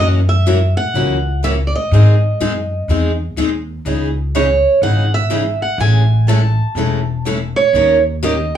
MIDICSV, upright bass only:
0, 0, Header, 1, 2, 480
1, 0, Start_track
1, 0, Key_signature, 4, "minor"
1, 0, Tempo, 485712
1, 1891, Time_signature, 4, 2, 24, 8
1, 8470, End_track
2, 0, Start_track
2, 0, Title_t, "Upright bass"
2, 0, Program_c, 0, 32
2, 0, Note_on_c, 0, 42, 95
2, 731, Note_off_c, 0, 42, 0
2, 930, Note_on_c, 0, 37, 84
2, 1698, Note_off_c, 0, 37, 0
2, 1891, Note_on_c, 0, 44, 96
2, 2274, Note_off_c, 0, 44, 0
2, 2374, Note_on_c, 0, 42, 82
2, 2780, Note_off_c, 0, 42, 0
2, 2847, Note_on_c, 0, 40, 83
2, 3256, Note_off_c, 0, 40, 0
2, 3324, Note_on_c, 0, 39, 78
2, 3735, Note_off_c, 0, 39, 0
2, 3805, Note_on_c, 0, 37, 91
2, 4574, Note_off_c, 0, 37, 0
2, 4759, Note_on_c, 0, 32, 86
2, 5531, Note_off_c, 0, 32, 0
2, 5712, Note_on_c, 0, 33, 94
2, 6487, Note_off_c, 0, 33, 0
2, 6669, Note_on_c, 0, 28, 81
2, 7445, Note_off_c, 0, 28, 0
2, 7640, Note_on_c, 0, 39, 100
2, 8411, Note_off_c, 0, 39, 0
2, 8470, End_track
0, 0, End_of_file